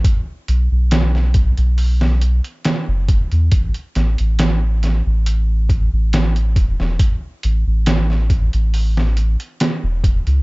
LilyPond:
<<
  \new Staff \with { instrumentName = "Sub bass" } { \clef bass \time 4/4 \key a \lydian \tempo 4 = 69 r8 b,,16 b,,4 b,,4 r8 fis,,8 e,16 | a,,16 r16 a,,16 a,,4 a,,4 a,,8. e,,16 e,,16 | r8 a,,16 a,,4 a,,4 r8 e,,8 cis,16 | }
  \new DrumStaff \with { instrumentName = "Drums" } \drummode { \time 4/4 <hh bd>8 hh8 <hh sn>16 sn16 <hh bd>16 hh16 hho16 sn16 hh16 hh16 <hh sn>8 <hh bd>16 hh16 | <hh bd>16 hh16 <hh sn>16 hh16 <hh sn>8 <hh sn>8 hh8 <hh bd>8 <hh sn>16 hh16 <hh bd>16 sn16 | <hh bd>8 hh8 <hh sn>16 sn16 <hh bd>16 hh16 hho16 sn16 hh16 hh16 <hh sn>8 <hh bd>16 hh16 | }
>>